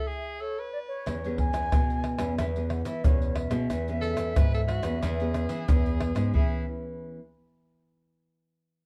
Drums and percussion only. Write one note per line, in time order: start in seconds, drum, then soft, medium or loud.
1.07 pandeiro medium
1.07 tamborim medium
1.07 shaker medium
1.07 surdo medium
1.24 pandeiro soft
1.24 shaker soft
1.38 pandeiro medium
1.38 surdo medium
1.54 pandeiro medium
1.54 tamborim medium
1.54 shaker medium
1.72 pandeiro medium
1.72 tamborim medium
1.72 shaker medium
1.72 surdo loud
1.90 pandeiro soft
1.90 shaker soft
2.04 pandeiro medium
2.04 tamborim medium
2.19 pandeiro medium
2.19 tamborim medium
2.19 shaker medium
2.38 pandeiro medium
2.38 tamborim medium
2.38 shaker medium
2.38 surdo medium
2.56 pandeiro soft
2.56 shaker soft
2.70 pandeiro medium
2.70 tamborim medium
2.85 pandeiro medium
2.85 shaker medium
3.04 pandeiro medium
3.04 shaker medium
3.04 surdo loud
3.22 pandeiro soft
3.22 shaker soft
3.36 pandeiro medium
3.36 tamborim medium
3.51 pandeiro medium
3.51 tamborim medium
3.51 shaker medium
3.70 pandeiro medium
3.70 tamborim medium
3.70 shaker medium
3.70 surdo medium
3.88 pandeiro soft
3.88 shaker soft
4.02 pandeiro medium
4.17 pandeiro medium
4.17 tamborim medium
4.17 shaker medium
4.36 pandeiro medium
4.36 tamborim medium
4.36 shaker medium
4.36 surdo loud
4.54 pandeiro soft
4.54 shaker soft
4.69 pandeiro medium
4.69 tamborim medium
4.83 pandeiro medium
4.83 tamborim medium
4.83 shaker medium
5.03 pandeiro medium
5.03 tamborim medium
5.03 shaker medium
5.03 surdo medium
5.20 pandeiro soft
5.20 shaker soft
5.34 pandeiro medium
5.34 tamborim medium
5.34 shaker medium
5.49 pandeiro medium
5.49 shaker medium
5.69 pandeiro medium
5.69 shaker medium
5.69 surdo loud
5.86 pandeiro soft
5.86 shaker soft
6.00 pandeiro medium
6.00 tamborim medium
6.16 pandeiro medium
6.16 tamborim medium
6.16 shaker medium
6.35 surdo loud